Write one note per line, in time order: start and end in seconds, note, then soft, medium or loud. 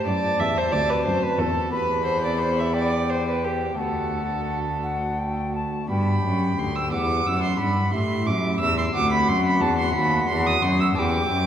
0.00 0.66 A3 soft
0.00 0.68 E4 soft
0.00 0.69 G4 soft
0.00 1.68 A5 medium
0.06 0.37 F#2 medium
0.06 0.36 F#2 medium
0.06 0.41 D5 medium
0.39 0.69 E2 soft
0.39 0.70 E2 medium
0.39 0.59 E5 medium
0.57 0.73 C5 medium
0.68 1.03 D2 medium
0.68 1.35 A3 soft
0.68 1.68 C4 soft
0.68 1.69 F#4 soft
0.68 0.91 D5 loud
0.73 1.03 D2 soft
0.90 1.05 B4 medium
1.05 1.37 F#2 medium
1.05 1.36 F#2 medium
1.05 1.24 C5 medium
1.23 1.40 B4 medium
1.38 1.70 E2 medium
1.38 1.69 E2 medium
1.38 1.72 A4 medium
1.69 3.74 E2 medium
1.69 3.75 E2 soft
1.69 3.74 B3 soft
1.69 3.74 G4 soft
1.69 2.05 B4 medium
1.69 2.75 B5 medium
2.05 2.22 C5 medium
2.24 2.40 D5 medium
2.40 2.60 C5 medium
2.59 2.74 E5 medium
2.74 3.11 D5 medium
2.74 3.78 G5 medium
3.09 3.27 C5 medium
3.28 3.46 B4 medium
3.44 3.78 G4 medium
3.74 5.65 D2 soft
3.74 5.83 A3 soft
3.74 5.84 D4 soft
3.74 5.84 F#4 soft
3.78 5.65 D2 soft
3.78 5.51 A4 medium
3.78 4.58 F#5 medium
4.83 5.20 F#5 medium
5.19 5.54 G5 medium
5.55 5.89 A5 medium
5.85 6.21 G2 medium
5.85 6.21 B3 soft
5.85 6.21 D4 soft
5.85 6.89 G4 soft
5.85 6.60 B5 medium
5.90 6.20 G2 soft
5.90 6.88 G5 medium
6.23 6.57 F#2 medium
6.23 6.55 F#2 medium
6.58 6.93 D2 medium
6.58 6.89 D2 medium
6.58 6.77 C6 medium
6.75 6.92 E6 medium
6.88 7.26 E2 medium
6.88 7.23 B3 soft
6.88 7.89 E4 soft
6.88 7.90 G4 soft
6.92 7.23 E2 soft
6.92 7.95 F#5 medium
6.92 7.28 D6 medium
7.26 7.59 F#2 medium
7.26 7.57 F#2 medium
7.26 7.43 E6 medium
7.43 7.58 C6 medium
7.59 7.90 G2 medium
7.59 7.93 G2 medium
7.59 7.92 B5 medium
7.90 8.29 A2 medium
7.90 8.88 A3 soft
7.90 8.90 E4 soft
7.90 8.91 G4 soft
7.90 8.93 E5 medium
7.90 8.28 C6 medium
7.94 8.25 A2 medium
8.27 8.60 F#2 medium
8.27 8.58 F#2 medium
8.27 8.60 D6 medium
8.60 8.94 E2 medium
8.60 8.92 E2 medium
8.60 8.77 E6 loud
8.78 8.85 C6 medium
8.90 9.57 A3 medium
8.90 9.90 C4 medium
8.90 9.91 F#4 soft
8.90 10.97 F#5 medium
8.90 9.11 D6 loud
8.95 9.29 D2 medium
8.95 9.25 D2 medium
9.12 9.29 B5 loud
9.28 9.62 F#2 medium
9.28 9.58 F#2 medium
9.28 9.45 C6 loud
9.46 9.62 B5 medium
9.61 9.94 E2 medium
9.61 9.91 E2 medium
9.61 9.77 A5 medium
9.78 9.93 C6 loud
9.91 10.28 D#2 medium
9.91 10.26 A3 medium
9.91 10.91 B3 medium
9.91 10.92 F#4 medium
9.91 10.27 B5 loud
9.95 10.26 D#2 medium
10.28 10.61 E2 medium
10.28 10.59 E2 medium
10.28 10.48 C6 medium
10.46 10.63 D#6 loud
10.62 10.92 F#2 medium
10.62 10.95 F#2 medium
10.62 10.79 C6 loud
10.80 10.87 E6 medium
10.93 11.29 E2 medium
10.93 11.26 E2 medium
10.93 11.27 B3 medium
10.93 11.46 G4 medium
10.93 10.99 A5 medium
10.97 11.46 G5 medium
10.97 11.46 D6 loud
11.29 11.46 F#2 medium